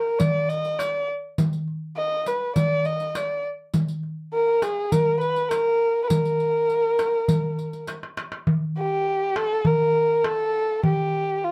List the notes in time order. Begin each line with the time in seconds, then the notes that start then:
Already playing: A#4
0.19 D5, riq, darbuka dum
0.49 D#5, riq, darbuka ka
0.65 riq
0.78 D5, riq, darbuka tek
1.38 riq, darbuka dum
1.53 riq
1.68 darbuka ka
1.96 D#5
2.26 B4, riq
2.55 D5, riq, darbuka dum
2.85 D#5, riq, darbuka ka
3.00 riq
3.15 D5, riq, darbuka tek
3.74 riq, darbuka dum
3.88 riq
4.03 darbuka ka
4.33 A#4
4.62 G#4, riq, darbuka tek
4.92 A#4, riq, darbuka dum
5.20 B4, riq, darbuka ka
5.36 riq
5.49 A#4, riq, darbuka tek
6.04 A#4 B4
6.10 riq, darbuka dum
6.25 riq
6.40 riq, darbuka ka
6.70 riq, darbuka ka
6.99 riq, darbuka tek
7.28 riq, darbuka dum
7.58 riq, darbuka ka
7.73 riq, darbuka ka
7.87 riq, darbuka tek
8.03 darbuka ka
8.17 riq, darbuka tek
8.32 darbuka ka
8.47 darbuka dum
8.77 G4, darbuka ka
9.36 A4, darbuka tek
9.65 A#4, darbuka dum
9.95 darbuka ka
10.10 darbuka ka
10.24 A4, darbuka tek
10.84 G4, darbuka dum
11.13 darbuka ka
11.43 F4